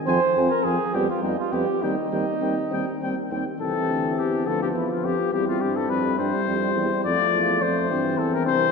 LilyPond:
<<
  \new Staff \with { instrumentName = "Trumpet" } { \time 6/8 \key c \minor \tempo 4. = 69 aes''8 aes''8 aes''8 g''8 g''8 g''8 | g''8 g''8 g''8 g''8 g''8 g''8 | \key c \major a'4 g'8 a'16 g'16 e'16 f'16 g'8 | g'16 f'16 g'16 a'16 b'8 c''4. |
d''4 c''4 a'16 bes'16 c''8 | }
  \new Staff \with { instrumentName = "Flugelhorn" } { \time 6/8 \key c \minor c''8. bes'16 aes'8 g'16 f'16 ees'16 f'16 g'8 | ees'2~ ees'8 r8 | \key c \major g'4. f'4. | e'4. e'4. |
f'4. c'4. | }
  \new Staff \with { instrumentName = "French horn" } { \time 6/8 \key c \minor c'8 c'8 c'8 b8 b8 b8 | c'8 c'8 c'8 c'8 c'8 c'8 | \key c \major c'4. b4. | c'4. g4. |
a4. c'4. | }
  \new Staff \with { instrumentName = "Trombone" } { \clef bass \time 6/8 \key c \minor f8 f8 f8 g8 g8 g8 | g8 g8 g8 g8 g8 g8 | \key c \major e4. f4. | g2. |
f4. e4. | }
  \new Staff \with { instrumentName = "Tuba" } { \clef bass \time 6/8 \key c \minor f,8 f,8 f,8 f,8 f,8 f,8 | ees,8 ees,8 ees,8 ees,8 ees,8 ees,8 | \key c \major c,8 d,8 e,8 d,8 e,8 f,8 | e,8 g,8 f,8 g,8 f,8 e,8 |
f,8 e,8 f,8 g,8 e,8 c,8 | }
>>